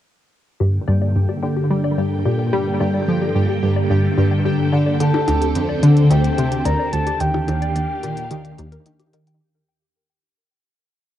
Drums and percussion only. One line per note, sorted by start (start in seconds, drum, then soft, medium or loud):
5.00 closed hi-hat medium
5.14 percussion blips medium
5.28 closed hi-hat medium
5.28 percussion blips medium
5.42 closed hi-hat soft
5.55 closed hi-hat medium
5.83 closed hi-hat medium
5.97 closed hi-hat soft
6.11 closed hi-hat medium
6.24 closed hi-hat soft
6.38 closed hi-hat medium
6.52 closed hi-hat medium
6.65 closed hi-hat medium
6.93 closed hi-hat medium
7.07 closed hi-hat medium
7.20 closed hi-hat medium
7.34 percussion blips medium
7.48 closed hi-hat medium
7.48 percussion blips medium
7.62 closed hi-hat soft
7.76 closed hi-hat medium
8.03 closed hi-hat medium
8.17 closed hi-hat soft
8.31 closed hi-hat medium
8.45 closed hi-hat soft
8.58 closed hi-hat medium
8.72 closed hi-hat medium
8.86 closed hi-hat medium
9.00 closed hi-hat soft
9.13 closed hi-hat medium
9.27 closed hi-hat medium